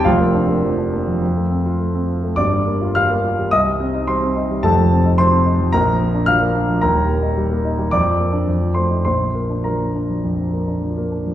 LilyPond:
<<
  \new Staff \with { instrumentName = "Grand piano" } { \time 4/4 \key bes \major \tempo 4 = 106 <f' f''>2.~ <f' f''>8 r8 | <d'' d'''>4 <f'' f'''>4 <ees'' ees'''>4 <c'' c'''>4 | <a' a''>4 <c'' c'''>4 <bes' bes''>4 <f'' f'''>4 | <bes' bes''>2 <d'' d'''>4. <c'' c'''>8 |
<c'' c'''>4 <bes' bes''>2 r4 | }
  \new Staff \with { instrumentName = "Grand piano" } { \time 4/4 \key bes \major <f,, f,>16 bes16 d'16 bes16 f16 d'16 bes16 f16 f,16 a16 c'16 f'16 a16 c'16 f'16 a16 | <g,, g,>16 g16 bes16 f'16 g16 bes16 f'16 g16 c,16 g16 c'16 ees'16 g16 c'16 ees'16 g16 | <f,, f,>16 f16 c'16 ees'16 f16 c'16 ees'16 f16 bes,,16 f16 bes16 d'16 f16 bes16 d'16 f16 | <ees,, ees,>16 g16 bes16 ees'16 g16 bes16 ees'16 g16 f,16 f16 bes16 d'16 f,16 f16 a16 ees'16 |
bes,,16 f16 bes16 d'16 f16 bes16 d'16 f16 f,16 f16 bes16 d'16 f16 bes16 d'16 f16 | }
>>